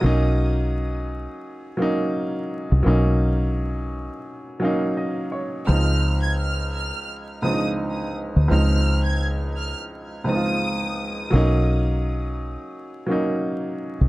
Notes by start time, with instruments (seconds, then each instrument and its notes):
0.01 fingered electric bass B1, upright piano F#3 A#3 C#4
0.06 upright piano D#4
1.77 upright piano F#3 A#3 C#4
1.82 upright piano D#4
2.72 fingered electric bass C2
2.83 fingered electric bass B1, upright piano F#3 A#3 C#4
2.88 upright piano D#4
4.60 upright piano F#3 A#3 C#4 F5
4.65 upright piano D#4
4.97 upright piano D#5
5.32 upright piano C#5
5.67 upright piano C#2 F3 G#3 C4, fingered electric bass C#2, violin section F6
5.72 upright piano D#4
6.23 violin section G#6
6.37 violin section F6
6.76 violin section F6
7.42 upright piano C#2 F3 G#3 C4, violin section D#6
7.47 upright piano D4
7.54 upright piano D#4
8.36 fingered electric bass D2
8.48 upright piano C#2 F3 G#3 C4, fingered electric bass C#2
8.52 upright piano D#4, violin section F6
9.05 violin section G#6
9.57 violin section F6
10.24 upright piano C#2 F3 G#3 C4, violin section D#6
10.29 upright piano D#4
10.36 upright piano F4
11.30 fingered electric bass B1, upright piano F#3 A#3 C#4
11.35 upright piano D#4
13.06 upright piano F#3 A#3 C#4
13.11 upright piano D#4
14.01 fingered electric bass C2